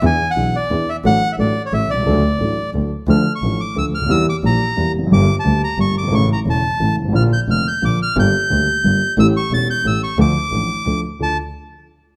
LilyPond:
<<
  \new Staff \with { instrumentName = "Bandoneon" } { \time 3/4 \key d \major \tempo 4 = 177 gis''8. fis''8. d''4 e''8 | fis''8. e''16 d''8. cis''16 e''8 d''8~ | d''2 r4 | \key d \minor f'''8. cis'''8. d'''8 e'''8 f'''8 |
e'''8 d'''8 bes''4. r8 | d'''8. a''8. bes''8 cis'''8 d'''8 | cis'''8 bes''8 a''4. r8 | f'''8 g'''8 f'''8 g'''8 d'''8 f'''8 |
g'''2. | e'''8 cis'''8 a'''8 g'''8 e'''8 cis'''8 | d'''2~ d'''8 r8 | a''8 r2 r8 | }
  \new Staff \with { instrumentName = "Grand piano" } { \clef bass \time 3/4 \key d \major <e, e b d' gis'>8 r8 <b,, b, e b d' gis'>8 r8 <e, e b d' gis'>8 r8 | <a,, a, fis a d' a'>8 r8 <a,, a, fis a d' a'>8 r8 <a,, a, e a cis' a'>8 r32 b,,32 c,32 cis,32 | <d, d fis a d' a'>8 r8 <a,, a, fis a d' a'>8 r8 <d, d fis a d' a'>8 r8 | \key d \minor <d, d f a d' a'>8 r8 <a,, a, f a d' a'>8 r8 <d, d f a d' a'>8 r32 cis,32 d,32 ees,32 |
<e, e g bes g'>8 r8 <bes,, bes, e g bes g'>8 r8 <e, e g bes g'>8 r32 e,32 f,32 fis,32 | <g,, g, d g bes g'>8 r8 <d, d g bes g'>8 r8 <g,, g, d g bes g'>8 r32 fis,,32 g,,32 gis,,32 | <a,, a, cis e a e'>8 r8 <e,, e, cis e a e'>8 r8 <a,, a, cis e a e'>8 r32 g,,32 gis,,32 a,,32 | <bes,, bes, d f bes f'>8 r8 <f,, f, d f bes f'>8 r8 <bes,, bes, d f bes f'>8 r8 |
<g,, g, d g bes g'>8 r8 <d, d g bes g'>8 r8 <g,, g, d g bes g'>8 r8 | <a,, a, e a cis' g'>8 r8 <e,, e, e a cis' g'>8 r8 <a,, a, e a cis' g'>8 r8 | <d, d f a d' a'>8 r8 <a,, a, f a d' a'>8 r8 <d, d f a d' a'>8 r8 | <d, d' f' a'>8 r2 r8 | }
  \new Staff \with { instrumentName = "Double bass" } { \clef bass \time 3/4 \key d \major e,8 r8 b,,8 r8 e,8 r8 | a,,8 r8 a,,8 r8 a,,8 c,8 | d,8 r8 a,,8 r8 d,8 r8 | \key d \minor d,8 r8 a,,8 r8 d,8 d,8 |
e,8 r8 bes,,8 r8 e,8 f,,8 | g,,8 r8 d,8 r8 g,,8 g,,8 | a,,8 r8 e,,8 r8 a,,8 gis,,8 | bes,,8 r8 f,,8 r8 bes,,8 r8 |
g,,8 r8 d,8 r8 g,,8 r8 | a,,8 r8 e,,8 r8 a,,8 r8 | d,8 r8 a,,8 r8 d,8 r8 | d,8 r2 r8 | }
>>